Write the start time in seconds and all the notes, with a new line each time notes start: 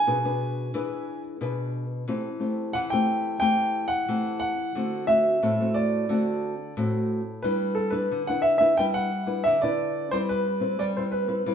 Already playing: G#5
0.07 B2 D4 G#4 B4
0.24 D4 G#4 B4
0.74 E3 D4 G#4 B4
1.41 B2 D4 G#4 B4
2.08 E3 A3 C4 G4
2.40 A3 C4 G4
2.73 E3 F#5
2.90 A3 C4 G4 G5
3.40 E3 A3 C4 G4 G5
3.88 F#5
4.08 E3 A3 C4 G4
4.40 F#5
4.75 D3 A3 C4 F#4
5.07 A3 C4 F#4 E5
5.43 A2 A3 C4 F#4
5.60 A3 C4 F#4
5.74 D5
6.09 D3 A3 C4 F#4
6.77 A2 A3 C4 F#4
7.42 G3 D4 E4 B4
7.75 A4
7.90 D4 E4 B4
8.11 D3
8.27 D4 E4 B4 F#5
8.42 E5
8.58 D4 E4 B4 E5
8.77 G3 D4 E4 B4 G5
8.94 F#5
9.26 D4 E4 B4
9.44 D3 E5
9.62 D4 E4 B4 D5
10.11 G3 C4 E4 B4 C5
10.29 B4
10.60 C4 E4 B4
10.79 G3 D5
10.97 C4 E4 B4 C5
11.12 B4
11.28 C4 E4 B4
11.46 G3 C4 E4 B4